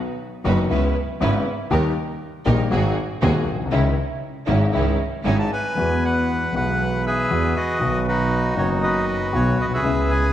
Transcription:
0.44 0.66 F#1 medium
0.44 0.66 F#2 medium
0.44 0.66 D#3 medium
0.44 0.66 F#3 medium
0.44 0.66 B3 medium
0.44 0.66 D#4 medium
0.44 0.66 F#4 medium
0.44 0.66 B4 medium
0.70 0.92 C#2 medium
0.70 0.92 C#3 medium
0.70 0.92 G#3 medium
0.70 0.92 B3 medium
0.70 0.91 C#4 medium
0.70 0.91 E4 medium
0.70 0.92 E4 medium
0.70 0.91 B4 medium
1.21 1.42 G#1 medium
1.21 1.42 G#2 medium
1.21 1.42 C#3 medium
1.21 1.42 G#3 medium
1.21 1.42 B3 medium
1.21 1.42 C#4 medium
1.21 1.42 E4 medium
1.21 1.42 B4 medium
1.71 1.92 D#2 medium
1.71 1.92 D#3 medium
1.71 1.92 G3 medium
1.71 1.92 A#3 medium
1.71 1.92 D#4 medium
1.71 1.92 G4 medium
1.71 1.92 A#4 medium
2.45 2.67 A#1 medium
2.45 2.67 A#1 loud
2.45 2.67 A#2 medium
2.45 2.67 D#3 medium
2.45 2.67 G3 medium
2.45 2.67 A#3 medium
2.45 2.67 D#4 medium
2.45 2.67 G4 medium
2.45 2.67 A#4 medium
2.70 2.92 G#1 medium
2.70 2.92 G#2 medium
2.70 2.92 D#3 medium
2.70 2.92 G#3 medium
2.70 2.92 C4 medium
2.70 2.92 F#4 medium
2.70 2.92 G#4 medium
3.21 3.43 D#1 medium
3.21 3.43 D#2 medium
3.21 3.43 D#3 medium
3.21 3.43 G#3 medium
3.21 3.43 C4 medium
3.21 3.43 F#4 medium
3.21 3.43 G#4 medium
3.47 3.72 B1 medium
3.53 3.59 A#1 medium
3.59 3.65 B1 medium
3.65 3.72 C2 medium
3.71 3.93 C#2 medium
3.71 3.93 C#3 medium
3.71 3.93 D#3 medium
3.71 3.93 G#3 medium
3.71 3.93 C#4 medium
3.71 3.93 D#4 medium
3.71 3.93 E4 medium
4.47 4.69 G#1 medium
4.47 4.69 G#2 medium
4.47 4.69 D#3 medium
4.47 4.69 G#3 medium
4.47 4.69 C#4 medium
4.47 4.69 D#4 medium
4.47 4.69 E4 medium
4.72 4.95 C#2 medium
4.72 4.95 C#3 medium
4.72 4.94 D#3 medium
4.72 4.95 G#3 medium
4.72 4.95 C#4 medium
4.72 4.95 D#4 medium
4.72 4.95 E4 medium
5.24 5.47 G#1 medium
5.24 5.47 G#2 medium
5.24 5.47 D#3 medium
5.24 5.47 G#3 medium
5.24 5.47 C#4 medium
5.24 5.47 D#4 medium
5.24 5.47 E4 medium
5.24 5.38 G#5 medium
5.39 5.51 A5 medium
5.53 6.04 B4 medium
5.53 6.05 G#5 medium
5.76 6.50 E2 medium
5.76 6.51 E2 medium
5.76 6.50 E3 medium
5.76 6.50 G#3 soft
5.76 6.51 B3 soft
5.76 6.51 F#4 medium
6.05 6.55 B4 medium
6.05 6.54 F#5 medium
6.52 7.26 B1 medium
6.52 7.27 B1 medium
6.52 7.26 B2 medium
6.52 7.25 E3 medium
6.52 7.26 G#3 soft
6.52 7.27 B3 soft
6.52 7.27 F#4 medium
6.52 7.02 F#5 medium
6.57 7.05 B4 medium
7.06 7.78 G#4 medium
7.06 7.55 B4 medium
7.06 7.58 E5 medium
7.30 7.52 E2 medium
7.30 7.52 E3 medium
7.30 7.52 G#3 medium
7.30 7.52 B3 medium
7.30 7.52 F#4 medium
7.56 8.06 F#4 medium
7.56 8.06 B4 medium
7.56 8.03 D#5 medium
7.79 8.54 B1 medium
7.79 8.54 B2 medium
7.79 8.53 D#3 medium
7.79 8.53 F#3 medium
7.79 8.54 B3 medium
7.79 8.55 F#4 medium
8.08 9.05 D#4 medium
8.08 8.82 F#4 medium
8.08 8.55 B4 medium
8.55 9.29 F#1 medium
8.55 9.30 F#1 medium
8.55 9.29 F#2 medium
8.55 9.28 D#3 medium
8.55 9.29 F#3 medium
8.55 9.30 B3 medium
8.55 8.70 C#5 medium
8.59 9.31 F#4 medium
8.83 9.81 F#4 medium
8.83 9.73 B4 medium
8.83 9.30 D#5 medium
9.32 9.55 B1 medium
9.32 9.55 B2 medium
9.32 9.54 D#3 medium
9.32 9.54 F#3 medium
9.32 9.55 B3 medium
9.32 9.55 F#4 medium
9.32 9.58 C#5 medium
9.59 9.84 B1 medium
9.59 9.66 D#5 medium
9.65 9.71 A#1 soft
9.71 9.78 B1 medium
9.71 10.33 G#4 medium
9.71 10.33 B4 medium
9.71 10.11 E5 medium
9.77 9.84 C2 medium
9.82 10.33 C#2 medium
9.82 10.33 C#3 medium
9.82 10.33 G#3 medium
9.82 10.33 B3 medium
9.86 10.33 E4 medium
10.11 10.33 G#5 medium

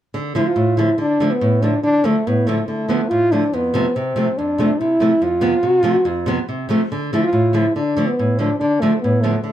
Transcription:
0.14 0.34 D3 medium
0.35 0.46 D3 medium
0.35 0.46 F3 medium
0.35 0.47 A3 medium
0.35 0.49 E4 medium
0.47 0.79 F4 medium
0.56 0.88 A2 medium
0.77 0.88 D3 medium
0.77 0.89 F3 medium
0.77 0.89 A3 medium
0.77 0.99 E4 medium
0.98 1.19 D3 medium
0.98 1.33 D4 medium
1.20 1.31 D3 medium
1.20 1.31 F3 medium
1.20 1.32 A3 medium
1.31 1.63 B3 medium
1.41 1.73 A2 medium
1.62 1.73 D3 medium
1.62 1.73 F3 medium
1.62 1.74 A3 medium
1.62 1.83 D4 medium
1.83 2.03 D3 medium
1.83 2.07 D4 loud
2.04 2.15 D3 medium
2.04 2.15 F3 medium
2.04 2.16 A3 medium
2.04 2.29 A3 medium
2.27 2.58 A2 medium
2.27 2.50 B3 medium
2.47 2.58 D3 medium
2.47 2.58 F3 medium
2.47 2.68 A3 medium
2.47 2.59 A3 medium
2.68 2.87 D3 medium
2.68 3.11 A3 medium
2.89 3.00 D3 medium
2.89 3.00 F3 medium
2.89 3.00 B3 medium
3.09 3.42 A2 medium
3.09 3.34 F4 loud
3.32 3.43 D3 medium
3.32 3.43 F3 medium
3.32 3.43 A3 medium
3.32 3.56 D4 medium
3.53 3.85 F2 medium
3.53 3.97 B3 medium
3.74 3.85 C3 medium
3.74 3.85 F3 medium
3.74 3.85 A3 medium
3.96 4.15 C3 medium
3.96 4.39 C4 medium
4.16 4.27 C3 medium
4.16 4.27 F3 medium
4.16 4.28 A3 medium
4.38 4.70 F2 medium
4.38 4.81 D4 medium
4.58 4.69 C3 medium
4.58 4.70 F3 medium
4.58 4.70 A3 medium
4.80 4.99 C3 medium
4.80 5.24 E4 medium
5.00 5.11 C3 medium
5.00 5.11 F3 medium
5.00 5.12 A3 medium
5.22 5.53 F2 medium
5.22 5.68 F4 loud
5.41 5.53 C3 medium
5.41 5.53 F3 medium
5.41 5.53 B3 medium
5.63 5.82 C3 medium
5.68 5.80 F#4 loud
5.80 5.95 C3 medium
5.80 5.95 F3 medium
5.80 5.93 F4 loud
5.84 5.95 A3 medium
5.93 6.05 F#4 loud
6.05 6.37 F2 medium
6.05 6.49 F4 loud
6.26 6.38 C3 medium
6.26 6.38 F3 medium
6.26 6.39 B3 medium
6.49 6.67 C3 medium
6.69 6.80 C3 medium
6.69 6.81 F3 medium
6.69 6.81 A3 medium
6.92 7.12 D3 medium
7.13 7.23 D3 medium
7.13 7.24 F3 medium
7.13 7.24 A3 medium
7.13 7.23 E4 medium
7.24 7.57 F4 loud
7.33 7.64 A2 medium
7.53 7.64 D3 medium
7.53 7.65 F3 medium
7.53 7.65 A3 medium
7.53 7.75 E4 medium
7.76 7.95 D3 medium
7.76 8.08 D4 medium
7.97 8.07 D3 medium
7.97 8.08 F3 medium
7.97 8.08 A3 medium
8.07 8.40 B3 medium
8.19 8.50 A2 medium
8.39 8.49 D3 medium
8.39 8.50 F3 soft
8.39 8.50 A3 medium
8.39 8.59 D4 medium
8.60 8.81 D3 medium
8.60 8.82 D4 medium
8.81 8.92 D3 medium
8.81 8.92 F3 medium
8.81 9.01 A3 medium
8.81 8.93 A3 medium
9.01 9.35 A2 medium
9.01 9.24 B3 medium
9.22 9.34 D3 medium
9.22 9.34 F3 medium
9.22 9.43 A3 medium
9.22 9.34 B3 medium
9.44 9.52 D3 medium
9.44 9.52 A3 medium

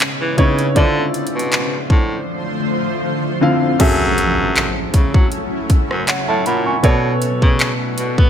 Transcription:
0.00 0.73 C#3 medium
0.00 0.73 G#3 medium
0.00 0.72 B3 medium
0.00 0.73 C#4 medium
0.00 clap loud
0.00 closed hi-hat medium
0.21 0.34 E3 loud
0.37 0.65 C#3 medium
0.37 0.68 C#3 loud
0.37 0.65 B3 medium
0.37 0.65 D#4 medium
0.37 0.65 E4 medium
0.37 0.66 C#5 loud
0.37 kick loud
0.37 closed hi-hat soft
0.59 closed hi-hat medium
0.75 1.81 D3 medium
0.75 1.06 D3 loud
0.75 3.77 D3 medium
0.75 3.77 F3 medium
0.75 3.77 A3 medium
0.75 1.81 E4 medium
0.75 1.82 F4 medium
0.75 1.81 C5 medium
0.75 3.77 C5 medium
0.75 1.82 D5 loud
0.75 kick loud
0.75 closed hi-hat medium
1.14 closed hi-hat medium
1.27 closed hi-hat medium
1.35 1.78 B2 loud
1.39 closed hi-hat medium
1.52 clap loud
1.52 closed hi-hat medium
1.90 2.20 A2 medium
1.90 kick medium
3.41 3.69 D3 medium
3.41 3.69 C4 medium
3.41 3.69 E4 medium
3.41 3.69 F4 medium
3.41 3.69 F5 loud
3.79 4.72 F#2 loud
3.79 4.85 F#3 medium
3.79 6.81 F#3 medium
3.79 6.81 A3 medium
3.79 4.85 C#4 medium
3.79 6.81 C#4 medium
3.79 6.81 E4 medium
3.79 4.85 G#4 medium
3.79 4.85 A4 medium
3.79 4.86 E5 loud
3.79 kick loud
3.79 closed hi-hat medium
3.79 crash loud
3.79 impact medium
4.18 closed hi-hat medium
4.56 clap loud
4.56 closed hi-hat medium
4.94 5.10 C#3 medium
4.94 kick medium
4.94 closed hi-hat medium
5.14 5.28 F#3 medium
5.14 kick loud
5.32 closed hi-hat medium
5.70 5.78 F#2 soft
5.70 kick medium
5.70 closed hi-hat medium
5.91 6.04 F#2 loud
5.91 cross-stick medium
6.08 6.28 C#5 medium
6.08 6.27 F#5 medium
6.08 clap loud
6.08 closed hi-hat medium
6.28 6.42 A2 medium
6.28 6.45 E5 medium
6.28 6.45 A5 medium
6.46 6.75 A#2 loud
6.46 6.65 F#5 medium
6.46 6.65 B5 medium
6.46 closed hi-hat medium
6.66 7.03 G#5 medium
6.66 7.02 C#6 medium
6.83 7.89 B2 medium
6.83 7.13 B2 loud
6.83 8.30 A3 medium
6.83 7.89 B3 medium
6.83 8.30 B3 medium
6.83 8.30 F#4 medium
6.83 7.89 A4 medium
6.83 7.89 C#5 loud
6.83 7.89 D5 medium
6.83 kick loud
6.83 closed hi-hat medium
7.22 closed hi-hat medium
7.42 7.72 C#3 medium
7.42 kick medium
7.60 clap loud
7.60 closed hi-hat medium
7.98 8.14 B2 medium
7.98 closed hi-hat medium
8.18 8.30 B3 medium
8.18 kick loud

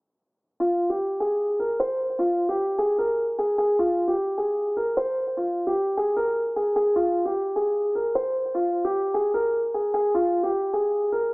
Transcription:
0.60 0.88 F4 medium
0.90 1.18 G4 medium
1.20 1.57 G#4 medium
1.60 1.78 A#4 medium
1.80 2.17 C5 medium
2.19 2.47 F4 medium
2.49 2.77 G4 medium
2.78 2.97 G#4 medium
2.98 3.36 A#4 medium
3.39 3.57 G#4 medium
3.58 3.77 G#4 medium
3.79 4.06 F4 medium
4.08 4.36 G4 medium
4.38 4.75 G#4 medium
4.77 4.96 A#4 medium
4.97 5.34 C5 medium
5.37 5.65 F4 medium
5.67 5.95 G4 medium
5.97 6.16 G#4 medium
6.16 6.54 A#4 loud
6.56 6.74 G#4 medium
6.76 6.95 G#4 medium
6.96 7.24 F4 loud
7.25 7.54 G4 medium
7.56 7.93 G#4 medium
7.95 8.14 A#4 medium
8.15 8.53 C5 medium
8.55 8.83 F4 loud
8.85 9.13 G4 medium
9.14 9.33 G#4 medium
9.34 9.71 A#4 medium
9.74 9.92 G#4 medium
9.94 10.13 G#4 medium
10.14 10.42 F4 medium
10.43 10.71 G4 medium
10.73 11.11 G#4 medium
11.12 11.31 A#4 medium

